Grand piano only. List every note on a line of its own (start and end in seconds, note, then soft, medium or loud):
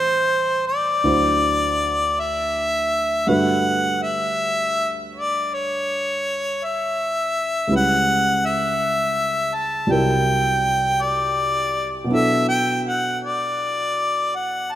0.00 1.03 A2 soft
0.00 1.03 E3 soft
0.00 1.02 G3 soft
0.00 1.03 C4 soft
0.00 1.03 C5 soft
1.04 3.27 D2 soft
1.04 3.26 D3 soft
1.04 3.27 F#3 soft
1.04 3.27 E4 soft
1.04 3.27 C5 medium
3.27 7.69 G2 soft
3.27 7.70 D3 soft
3.27 7.70 A3 soft
3.27 7.70 F#4 soft
3.27 7.70 B4 medium
7.67 9.87 C#2 soft
7.67 9.88 C#3 soft
7.67 9.88 G3 soft
7.67 9.89 E4 soft
7.72 9.90 B4 soft
9.87 12.07 C2 soft
9.87 12.08 C3 soft
9.87 12.04 F#3 soft
9.87 12.09 E4 soft
9.92 12.10 A#4 soft
12.04 14.75 B2 soft
12.04 14.75 F#3 soft
12.04 14.75 B3 soft
12.11 14.75 D4 soft
12.11 14.75 E4 soft
12.11 14.75 A4 medium